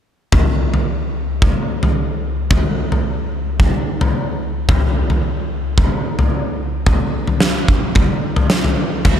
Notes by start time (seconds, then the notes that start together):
0.32 kick, floor tom
0.74 floor tom
1.42 kick, floor tom
1.83 floor tom
2.51 kick, floor tom
2.92 floor tom
3.60 kick, floor tom
4.01 floor tom
4.69 kick, floor tom
5.10 floor tom
5.78 kick, floor tom
6.19 floor tom
6.86 kick, floor tom
7.27 floor tom
7.40 snare
7.68 kick
7.95 kick, floor tom
8.36 floor tom
8.50 snare
8.64 floor tom
9.05 kick, floor tom, crash